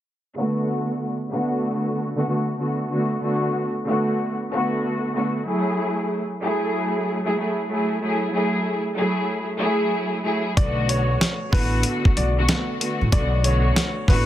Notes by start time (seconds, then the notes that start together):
0.36 D3 A3 B3 F#4
1.31 D3 A3 B3 F#4
2.15 D3 A3 B3 F#4
2.26 D3 A3 B3 F#4
2.58 D3 A3 B3 F#4
2.90 D3 A3 B3 F#4
3.20 D3 A3 B3 F#4
3.86 D3 A3 B3 F#4
4.51 D3 A3 B3 F#4
5.14 D3 A3 B3 F#4
5.44 F#3 A3 E4 G#4
6.41 F#3 A3 E4 G#4
7.24 F#3 A3 E4 G#4
7.37 F#3 A3 E4 G#4
7.69 F#3 A3 E4 G#4
8.00 F#3 A3 E4 G#4
8.31 F#3 A3 E4 G#4
8.95 F#3 A3 E4 G#4
9.58 F#3 A3 E4 G#4
10.23 F#3 A3 E4 G#4
10.57 B1 D3 A3 B3 F#4 D5, kick, closed hi-hat
10.89 C#5, closed hi-hat
11.21 snare, closed hi-hat
11.52 A1 D3 A3 B3 F#4 B4, kick, open hi-hat
11.83 closed hi-hat
12.05 muted upright bass stroke, kick
12.17 B1 D5, closed hi-hat
12.36 D3 A3 B3 F#4
12.47 D3 A3 B3 F#4, snare, closed hi-hat
12.79 D3 A3 B3 F#4, closed hi-hat
13.01 A1
13.11 B1 D3 A3 B3 F#4 D5, kick, closed hi-hat
13.41 D3 A3 B3 F#4 C#5, closed hi-hat
13.76 snare, closed hi-hat
14.08 A1 D3 A3 B3 F#4 B4, kick, open hi-hat